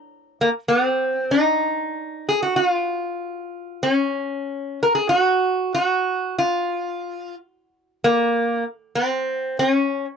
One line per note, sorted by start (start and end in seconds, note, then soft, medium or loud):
0.41 0.48 A#3 medium
0.68 1.33 C4 medium
1.31 2.26 D#4 medium
2.29 2.42 G#4 medium
2.43 2.56 F#4 medium
2.56 2.67 F#4 medium
2.67 3.88 F4 medium
3.83 4.79 C#4 medium
4.83 4.94 A#4 medium
4.95 5.09 G#4 medium
5.09 5.73 F#4 loud
5.75 6.38 F#4 medium
6.38 7.34 F4 medium
8.04 8.63 A#3 medium
8.95 9.59 C4 medium
9.59 10.05 C#4 medium